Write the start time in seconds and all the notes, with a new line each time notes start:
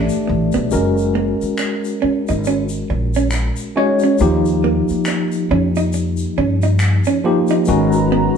Already playing: A3 D4 G4 D5
0.09 shaker
0.27 A1, muted hollow-body jazz guitar stroke
0.52 B1 B3, shaker
0.71 F#1 G#3 C#4 F#4 A#4, shaker
0.98 shaker
1.15 A#3
1.42 muted upright bass stroke, shaker
1.58 finger snap, muted hollow-body jazz guitar stroke, shaker
1.85 shaker
2.02 C#4, muted upright bass stroke
2.28 G#1 D#4, shaker
2.45 C#4, shaker
2.69 shaker
2.90 A#1, muted hollow-body jazz guitar stroke
3.14 C#4, shaker
3.31 finger snap, muted hollow-body jazz guitar stroke, shaker
3.56 shaker
3.76 G#3 C#4 D#4 F#4 C#5
3.99 shaker
4.04 C#4
4.18 D#2 F3 A#3 D#4 G4, shaker
4.46 shaker
4.64 A#3
4.89 muted upright bass stroke, shaker
5.05 finger snap, muted hollow-body jazz guitar stroke, shaker
5.32 shaker
5.51 F2 C#4
5.76 D#4, shaker
5.93 muted hollow-body jazz guitar stroke, shaker
6.17 shaker
6.38 G2 C#4
6.62 D#4, shaker
6.79 finger snap, shaker
7.04 C#4, shaker
7.24 F3 A#3 D#4 G4, muted hollow-body jazz guitar stroke
7.47 D#4, shaker
7.65 G#1 D#3 G#3 C#4 F#4 B4 A#5, shaker
7.92 shaker
8.12 B3